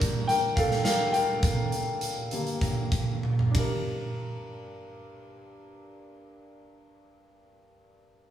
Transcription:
0.00 2.32 G2 soft
0.00 2.32 D3 soft
0.00 2.33 A#3 medium
0.00 0.26 D4 medium
0.00 0.28 A#4 medium
0.00 kick medium
0.00 closed hi-hat medium
0.28 0.55 A#4 medium
0.28 0.57 G5 medium
0.28 closed hi-hat medium
0.56 0.84 A4 medium
0.56 0.83 F5 medium
0.56 kick medium
0.56 closed hi-hat medium
0.71 snare soft
0.84 1.13 A#4 medium
0.84 1.14 F5 medium
0.84 snare medium
0.84 closed hi-hat medium
1.12 3.20 A#4 medium
1.12 3.18 G5 medium
1.12 closed hi-hat medium
1.43 kick medium
1.43 closed hi-hat medium
1.72 closed hi-hat soft
2.01 closed hi-hat medium
2.31 2.71 G2 soft
2.31 2.72 D3 soft
2.31 2.72 A#3 soft
2.31 closed hi-hat medium
2.47 closed hi-hat soft
2.61 kick medium
2.61 closed hi-hat medium
2.92 kick medium
2.92 closed hi-hat medium
3.23 high tom soft
3.39 mid tom soft
3.51 7.08 G2 medium
3.51 7.05 D4 soft
3.51 7.08 G4 soft
3.51 kick medium
3.51 ride medium
3.58 7.12 A#4 medium

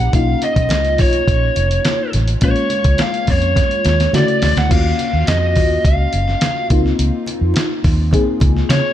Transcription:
0.00 0.11 A#3 medium
0.00 0.12 C#4 medium
0.00 0.14 E4 medium
0.00 0.14 G4 medium
0.00 0.15 F#5 medium
0.13 0.34 B1 loud
0.13 2.38 A#3 medium
0.13 2.38 C#4 medium
0.13 2.39 D#4 medium
0.13 2.39 F4 medium
0.13 0.44 F5 medium
0.13 kick loud
0.13 closed hi-hat medium
0.42 1.01 D#5 medium
0.42 closed hi-hat medium
0.42 muted conga soft
0.56 0.70 B1 medium
0.56 kick medium
0.56 closed hi-hat medium
0.69 0.99 C#2 medium
0.69 snare loud
0.69 closed hi-hat medium
0.69 high conga medium
0.85 closed hi-hat soft
0.98 1.20 B1 medium
0.98 2.11 C#5 medium
0.98 kick medium
0.98 open hi-hat medium
0.98 low conga medium
1.13 closed hi-hat soft
1.27 1.48 A#1 medium
1.27 kick medium
1.27 closed hi-hat medium
1.55 1.77 F1 medium
1.55 closed hi-hat medium
1.55 muted conga soft
1.71 closed hi-hat medium
1.85 snare loud
1.85 closed hi-hat medium
1.85 high conga medium
2.13 2.35 A1 medium
2.13 snare soft
2.13 closed hi-hat medium
2.13 high conga medium
2.28 closed hi-hat soft
2.41 2.52 A#1 loud
2.41 4.10 G#3 medium
2.41 4.10 A#3 medium
2.41 4.11 C#4 medium
2.41 4.11 F4 medium
2.41 3.02 C#5 medium
2.41 kick loud
2.41 closed hi-hat medium
2.41 muted conga soft
2.56 closed hi-hat soft
2.70 closed hi-hat medium
2.70 muted conga soft
2.84 2.95 C#2 medium
2.84 kick medium
2.84 closed hi-hat medium
2.98 3.30 F5 loud
2.98 snare loud
2.98 closed hi-hat medium
2.98 high conga medium
3.14 closed hi-hat soft
3.27 3.59 F2 medium
3.27 4.11 C#5 medium
3.27 kick medium
3.27 open hi-hat medium
3.27 low conga medium
3.42 closed hi-hat soft
3.55 kick medium
3.55 snare medium
3.55 closed hi-hat medium
3.55 low conga medium
3.71 closed hi-hat soft
3.85 4.06 D#2 medium
3.85 snare medium
3.85 closed hi-hat medium
3.85 muted conga soft
3.85 low conga medium
4.00 snare medium
4.00 closed hi-hat medium
4.13 4.71 C#3 medium
4.13 4.24 D3 medium
4.13 4.71 A3 medium
4.13 4.71 E4 medium
4.13 4.70 F#4 medium
4.13 4.59 D5 medium
4.13 snare medium
4.13 closed hi-hat medium
4.13 high conga medium
4.28 closed hi-hat soft
4.42 4.53 D2 medium
4.42 snare medium
4.42 open hi-hat medium
4.42 high conga medium
4.57 4.67 D2 medium
4.57 4.71 F#5 medium
4.57 snare medium
4.57 closed hi-hat soft
4.69 4.92 D#2 medium
4.69 6.66 A#3 medium
4.69 6.66 C#4 medium
4.69 6.67 F4 medium
4.69 6.67 F#4 medium
4.69 5.28 F5 loud
4.69 kick loud
4.69 closed hi-hat medium
4.69 crash medium
4.99 closed hi-hat medium
4.99 muted conga soft
5.13 5.24 D#2 medium
5.27 5.56 F2 medium
5.27 5.87 D#5 medium
5.27 snare loud
5.27 closed hi-hat medium
5.27 high conga medium
5.56 5.77 D#2 medium
5.56 kick medium
5.56 open hi-hat medium
5.56 low conga medium
5.84 6.05 C#2 medium
5.84 6.67 F5 medium
5.84 kick medium
5.84 closed hi-hat medium
6.13 6.34 F#1 medium
6.13 closed hi-hat medium
6.13 muted conga soft
6.28 snare soft
6.41 snare loud
6.41 closed hi-hat medium
6.41 high conga medium
6.70 6.91 C#2 medium
6.70 8.10 A#3 medium
6.70 8.10 C4 medium
6.70 8.11 D#4 medium
6.70 8.11 F4 medium
6.70 kick loud
6.70 closed hi-hat medium
6.70 high conga medium
6.86 snare soft
6.99 7.09 C#2 medium
6.99 closed hi-hat medium
6.99 muted conga soft
7.26 closed hi-hat medium
7.26 muted conga soft
7.41 7.52 F2 medium
7.54 snare loud
7.54 closed hi-hat medium
7.54 high conga medium
7.84 8.15 D#2 medium
7.84 kick medium
7.84 open hi-hat medium
7.84 low conga medium
8.11 8.93 A#3 medium
8.11 8.93 C4 medium
8.11 8.93 D#4 medium
8.11 8.93 G#4 medium
8.11 kick medium
8.11 closed hi-hat medium
8.11 low conga medium
8.40 8.62 C#2 medium
8.40 kick medium
8.40 closed hi-hat medium
8.40 muted conga soft
8.40 low conga medium
8.57 snare soft
8.69 8.80 C#3 medium
8.69 8.93 C#5 medium
8.69 snare loud
8.69 closed hi-hat medium
8.69 high conga medium

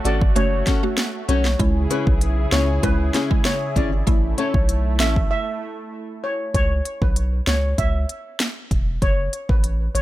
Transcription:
0.00 1.57 A3 medium
0.00 1.57 F#4 medium
0.04 0.32 G#1 medium
0.04 0.19 C#4 medium
0.04 0.20 F#4 medium
0.04 0.20 A4 loud
0.04 0.29 D5 medium
0.04 closed hi-hat medium
0.21 kick loud
0.36 0.63 F#1 loud
0.36 0.79 A3 medium
0.36 0.79 C#4 medium
0.36 0.79 F#4 loud
0.36 0.81 C#5 loud
0.36 closed hi-hat medium
0.66 0.81 C#4 medium
0.66 0.82 F#4 medium
0.66 0.82 A4 medium
0.66 kick loud
0.66 snare medium
0.66 closed hi-hat medium
0.83 1.01 A3 medium
0.83 1.01 C#4 medium
0.83 1.02 F#4 medium
0.98 snare loud
0.98 closed hi-hat medium
1.28 1.56 B1 medium
1.28 1.43 C#4 medium
1.28 1.43 F#4 loud
1.28 1.44 A4 loud
1.28 1.41 C#5 medium
1.28 closed hi-hat soft
1.45 snare medium
1.59 1.86 C#2 loud
1.59 4.05 C#3 medium
1.59 2.17 G#3 medium
1.59 2.17 C#4 medium
1.59 6.51 E4 medium
1.59 2.17 E4 loud
1.59 4.05 G#4 medium
1.59 kick loud
1.59 closed hi-hat medium
1.90 2.05 C#4 medium
1.90 2.05 E4 medium
1.90 2.06 G#4 medium
1.90 2.03 B4 medium
1.90 closed hi-hat medium
2.07 2.46 B1 loud
2.07 kick loud
2.21 closed hi-hat medium
2.52 2.79 C#2 medium
2.52 2.67 C#4 medium
2.52 2.67 E4 medium
2.52 2.67 G#4 medium
2.52 2.76 C#5 medium
2.52 snare loud
2.52 closed hi-hat medium
2.83 3.10 C#2 loud
2.83 3.27 G#3 loud
2.83 3.27 C#4 medium
2.83 3.27 E4 loud
2.83 3.28 B4 loud
2.83 kick medium
2.83 closed hi-hat medium
3.14 3.29 C#4 medium
3.14 3.29 E4 medium
3.14 3.29 G#4 loud
3.14 snare medium
3.14 closed hi-hat medium
3.31 3.49 G#3 medium
3.31 3.49 C#4 medium
3.31 3.49 E4 medium
3.31 kick loud
3.45 3.58 C#5 medium
3.45 snare loud
3.45 closed hi-hat medium
3.76 4.03 G#1 medium
3.76 3.90 C#4 medium
3.76 3.91 E4 medium
3.76 3.91 G#4 loud
3.76 3.89 D5 medium
3.76 kick medium
3.76 closed hi-hat medium
3.92 muted nylon-string guitar stroke medium
4.07 4.34 A1 loud
4.07 4.64 A3 medium
4.07 6.52 A3 medium
4.07 4.64 C#4 medium
4.07 4.64 E4 loud
4.07 kick loud
4.07 closed hi-hat medium
4.38 4.52 C#4 medium
4.38 4.53 E4 medium
4.38 4.53 A4 medium
4.38 4.51 C#5 medium
4.38 closed hi-hat medium
4.54 5.01 B1 loud
4.54 kick loud
4.69 closed hi-hat medium
4.99 5.27 A1 loud
4.99 5.14 C#4 medium
4.99 5.15 E4 medium
4.99 5.15 A4 loud
4.99 5.24 E5 medium
4.99 snare loud
4.99 closed hi-hat medium
5.16 kick loud
5.31 5.75 E5 loud
6.24 6.36 C#5 medium
6.54 6.81 C#2 loud
6.54 6.67 C#5 loud
6.54 kick loud
6.54 closed hi-hat medium
6.85 closed hi-hat medium
7.02 7.41 B1 medium
7.02 7.13 B4 medium
7.02 kick loud
7.16 closed hi-hat medium
7.47 7.74 C#2 medium
7.47 7.60 C#5 medium
7.47 snare loud
7.47 closed hi-hat medium
7.78 8.05 C#2 loud
7.78 8.23 E5 medium
7.78 kick medium
7.78 closed hi-hat medium
8.09 closed hi-hat soft
8.40 snare loud
8.40 closed hi-hat medium
8.71 8.98 E1 medium
8.71 kick medium
8.71 closed hi-hat soft
9.02 9.29 F#1 loud
9.02 9.15 C#5 medium
9.02 kick loud
9.02 closed hi-hat medium
9.33 closed hi-hat medium
9.49 9.89 A1 medium
9.49 9.60 B4 medium
9.49 kick loud
9.64 closed hi-hat medium
9.95 10.02 G#1 medium
9.95 10.02 C#5 medium
9.95 closed hi-hat medium

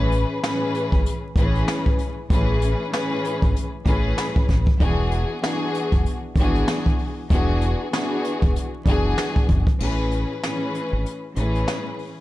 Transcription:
0.00 0.23 A1 loud
0.00 0.38 A2 medium
0.00 0.39 E3 medium
0.00 0.39 C#4 medium
0.00 0.39 G#4 medium
0.00 0.40 B4 loud
0.12 closed hi-hat medium
0.42 1.16 A2 medium
0.42 1.16 E3 medium
0.42 1.17 C#4 medium
0.42 1.17 G#4 medium
0.42 1.17 B4 loud
0.42 snare loud
0.42 closed hi-hat medium
0.75 closed hi-hat medium
0.92 1.04 G#1 medium
0.92 kick medium
0.92 closed hi-hat medium
1.06 closed hi-hat medium
1.35 1.63 A1 medium
1.35 2.09 A2 medium
1.35 2.10 E3 medium
1.35 2.10 C#4 medium
1.35 2.11 G#4 medium
1.35 2.11 B4 loud
1.35 kick medium
1.35 closed hi-hat medium
1.55 closed hi-hat soft
1.68 snare loud
1.68 closed hi-hat medium
1.86 kick medium
1.99 closed hi-hat medium
2.30 2.73 A1 loud
2.30 2.88 A2 medium
2.30 2.89 E3 medium
2.30 2.89 C#4 medium
2.30 2.90 G#4 medium
2.30 2.90 B4 loud
2.30 kick loud
2.30 closed hi-hat medium
2.62 closed hi-hat medium
2.91 3.65 A2 medium
2.91 3.66 E3 medium
2.91 3.66 C#4 medium
2.91 3.66 G#4 medium
2.91 3.67 B4 loud
2.91 snare loud
2.91 closed hi-hat loud
3.25 closed hi-hat medium
3.42 3.54 G#1 medium
3.42 kick loud
3.42 closed hi-hat medium
3.56 closed hi-hat medium
3.85 4.13 A1 medium
3.85 4.59 A2 medium
3.85 4.60 E3 medium
3.85 4.60 C#4 medium
3.85 4.60 G#4 medium
3.85 4.61 B4 loud
3.85 kick medium
3.85 closed hi-hat medium
4.18 snare loud
4.18 closed hi-hat medium
4.36 kick medium
4.49 4.65 A1 loud
4.49 kick medium
4.49 snare soft
4.49 closed hi-hat medium
4.67 kick loud
4.80 5.23 E1 loud
4.80 5.38 E3 loud
4.80 5.39 B3 medium
4.80 5.39 D4 medium
4.80 5.39 F#4 medium
4.80 5.40 G#4 loud
4.80 kick loud
4.80 closed hi-hat medium
5.12 closed hi-hat medium
5.40 6.15 E3 medium
5.40 6.15 B3 medium
5.40 6.16 D4 medium
5.40 6.16 F#4 medium
5.40 6.17 G#4 loud
5.40 snare loud
5.40 closed hi-hat loud
5.75 closed hi-hat medium
5.92 6.04 F#1 medium
5.92 kick medium
5.92 closed hi-hat medium
6.06 closed hi-hat medium
6.36 6.63 G#1 medium
6.36 7.11 E3 medium
6.36 7.11 B3 medium
6.36 7.11 D4 medium
6.36 kick medium
6.36 closed hi-hat medium
6.40 7.12 F#4 medium
6.40 7.12 G#4 loud
6.55 closed hi-hat soft
6.68 snare loud
6.68 closed hi-hat medium
6.86 kick medium
6.99 open hi-hat soft
7.29 7.73 E1 loud
7.29 7.88 E3 medium
7.29 7.89 B3 medium
7.29 7.89 D4 medium
7.29 7.89 F#4 medium
7.29 7.90 G#4 loud
7.29 kick loud
7.29 closed hi-hat medium
7.62 closed hi-hat medium
7.91 8.66 E3 medium
7.91 8.66 B3 medium
7.91 8.66 D4 medium
7.91 8.67 F#4 medium
7.91 8.67 G#4 medium
7.91 snare loud
7.91 closed hi-hat loud
8.25 closed hi-hat medium
8.42 8.54 E1 medium
8.42 kick medium
8.42 closed hi-hat medium
8.56 closed hi-hat medium
8.86 9.13 F#1 medium
8.86 9.60 E3 loud
8.86 9.60 B3 medium
8.86 9.60 D4 medium
8.86 9.61 F#4 medium
8.86 9.61 G#4 loud
8.86 kick medium
8.86 closed hi-hat medium
9.18 snare loud
9.18 closed hi-hat medium
9.36 kick medium
9.49 9.65 F#1 medium
9.49 kick medium
9.49 closed hi-hat medium
9.67 kick loud
9.67 closed hi-hat medium
9.80 10.23 A1 loud
9.80 10.38 A2 medium
9.80 10.39 E3 medium
9.80 10.39 C#4 medium
9.80 10.40 G#4 medium
9.80 10.40 B4 loud
9.80 crash medium
10.12 closed hi-hat medium
10.42 11.16 A2 medium
10.42 11.16 E3 medium
10.42 11.17 C#4 loud
10.42 11.17 G#4 medium
10.42 11.17 B4 loud
10.42 snare loud
10.42 closed hi-hat loud
10.75 closed hi-hat medium
10.93 11.04 G#1 medium
11.06 closed hi-hat medium
11.35 11.64 A1 medium
11.35 12.09 A2 loud
11.35 12.10 E3 medium
11.35 12.10 C#4 medium
11.35 12.11 G#4 medium
11.35 12.11 B4 loud
11.35 closed hi-hat medium
11.55 closed hi-hat soft
11.68 snare loud
11.68 closed hi-hat medium
11.99 open hi-hat soft

